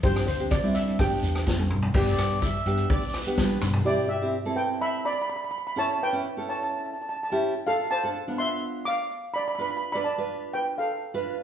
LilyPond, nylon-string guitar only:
\new Staff \with { instrumentName = "Nylon-string guitar" } { \time 4/4 \key c \major \tempo 4 = 126 <c' d' g'>8 r16 <c' d' g'>16 r16 <c' d' e'>8. <b d' g'>4. r8 | <b d' g'>4 r8 <b d' g'>8. r8 <b d' g'>8. r8 | <c' e' g'>8 r16 <c' e' g'>16 r16 <c' e' a'>4~ <c' e' a'>16 r4. | <cis' e' a'>8 r16 <cis' e' b'>16 r16 <cis' e' a'>4~ <cis' e' a'>16 r8. <cis' e' g'>8 r16 |
<d' f' a'>8 r16 <d' f' a'>16 r16 <b d' f'>4~ <b d' f'>16 r4. | <d' f' b'>8 r16 <d' f' b'>16 r16 <d' f' b'>4~ <d' f' b'>16 r8. <d' f' b'>8 r16 | }